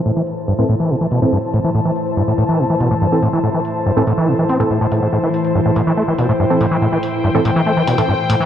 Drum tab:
HH |--o---o---oo--o-|--oo--o---o---o-|--o---o---oo--o-|--oo--o---o---o-|

HH |--o---o---oo--o-|